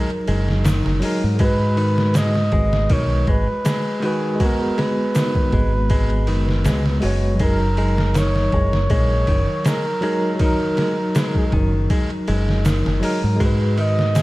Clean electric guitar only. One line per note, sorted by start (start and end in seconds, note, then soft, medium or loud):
0.28 0.64 G#3 medium
0.65 1.01 D#3 loud
1.03 1.22 G#3 medium
1.40 1.76 G#3 medium
1.77 2.13 D#3 loud
2.15 2.34 G#3 medium
2.53 2.89 G#3 medium
2.90 3.26 D#3 medium
3.28 3.47 G#3 medium
3.66 4.01 G#3 medium
4.03 4.39 D#3 loud
4.41 4.60 G#3 medium
4.78 5.14 G#3 medium
5.15 5.51 D#3 medium
5.53 5.72 G#3 medium
5.91 6.26 G#3 medium
6.28 6.64 D#3 medium
6.65 6.84 G#3 medium
7.03 7.39 G#3 medium
7.41 7.60 G#3 medium
7.78 8.14 G#3 medium
8.16 8.51 D#3 medium
8.53 8.72 G#3 medium
8.91 9.26 G#3 loud
9.28 9.64 D#3 loud
9.66 9.84 G#3 medium
10.03 10.39 G#3 loud
10.41 10.76 D#3 loud
10.78 10.97 G#3 medium
11.16 11.51 G#3 medium
11.53 11.89 D#3 loud
11.90 12.09 G#3 medium
12.28 12.64 G#3 medium
12.65 13.01 D#3 loud
13.03 13.22 G#3 medium
13.40 13.76 G#3 loud
13.78 14.14 D#3 loud
14.15 14.22 G#3 medium